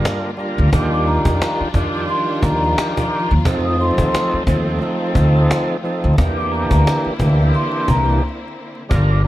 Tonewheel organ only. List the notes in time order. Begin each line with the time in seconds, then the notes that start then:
Already playing: G3 D4 F4 A#4
0.37 G3 D4 F4 A#4
0.72 D#3 D4 F4 G4
1.74 D#3 D4 F4 G4
3.45 F3 C4 D#4 A4
3.78 F3 C4 D#4 A4
4.47 F3 C4 D#4 A4
4.80 F3 C4 D#4 A4
5.83 F3 C4 D#4 A4
6.17 E3 A#3 D4 G4
7.20 E3 A#3 D4 G4
8.89 G3 D4 F4 A#4
9.24 G3